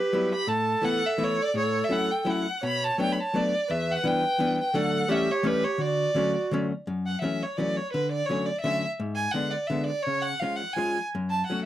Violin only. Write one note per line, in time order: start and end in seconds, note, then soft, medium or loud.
0.00 0.32 B4 medium
0.35 0.50 B5 medium
0.49 0.86 A5 medium
0.85 1.08 F#5 loud
1.06 1.25 E5 medium
1.24 1.44 C#5 loud
1.42 1.56 D5 medium
1.57 1.86 C#5 medium
1.84 1.94 E5 medium
1.92 2.12 F#5 medium
2.11 2.31 G5 medium
2.29 2.64 F#5 medium
2.66 2.86 B5 medium
2.84 3.00 A5 medium
3.01 3.14 G5 medium
3.12 3.22 B5 medium
3.20 3.38 A5 medium
3.37 3.73 D5 medium
3.71 3.93 E5 medium
3.92 4.09 F#5 medium
4.08 4.60 G5 loud
4.60 4.76 G5 medium
4.75 5.13 F#5 medium
5.12 5.33 E5 medium
5.31 5.48 C#5 medium
5.47 5.66 B4 medium
5.64 5.82 C#5 medium
5.81 6.52 D5 medium
7.06 7.21 F#5 medium
7.21 7.44 E5 medium
7.43 7.58 C#5 medium
7.57 7.78 D5 medium
7.76 7.92 C#5 medium
7.93 8.11 B4 medium
8.12 8.27 D5 medium
8.26 8.48 C#5 medium
8.46 8.60 D5 medium
8.61 8.88 E5 loud
9.16 9.33 G#5 loud
9.31 9.52 F#5 medium
9.51 9.69 D5 medium
9.67 9.86 E5 medium
9.86 10.04 D5 medium
10.02 10.24 C#5 medium
10.22 10.41 F#5 medium
10.39 10.58 F5 medium
10.56 10.75 F#5 medium
10.73 11.03 G#5 medium
11.30 11.46 A5 medium
11.46 11.64 F#5 medium